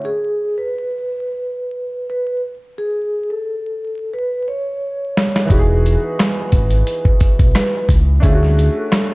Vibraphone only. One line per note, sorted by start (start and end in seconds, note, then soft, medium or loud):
0.05 0.54 G#4 loud
0.58 2.05 B4 medium
2.10 2.40 B4 medium
2.78 3.27 G#4 loud
3.30 4.10 A4 medium
4.13 4.44 B4 medium
4.48 5.46 C#5 medium
5.51 6.00 G#4 loud
6.04 7.51 B4 medium
7.55 7.86 B4 medium
8.23 8.72 G#4 loud
8.76 9.14 A4 medium